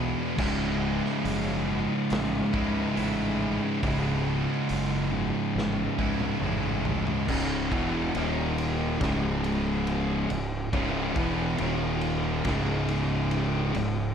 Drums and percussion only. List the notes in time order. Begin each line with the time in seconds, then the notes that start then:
0.39 kick, crash
1.06 snare
1.25 open hi-hat
2.10 snare, open hi-hat
2.54 kick
2.97 open hi-hat
3.83 kick, open hi-hat
4.69 open hi-hat
5.58 snare
5.99 kick
6.20 mid tom
6.41 mid tom
6.85 floor tom
7.07 floor tom
7.29 kick, crash
7.72 kick, ride
8.15 ride
8.58 ride
9.01 kick, snare, ride
9.44 ride
9.87 ride
10.30 ride
10.73 kick, ride
11.16 kick, ride
11.58 ride
12.01 ride
12.45 kick, snare, ride
12.89 ride
13.31 ride
13.75 ride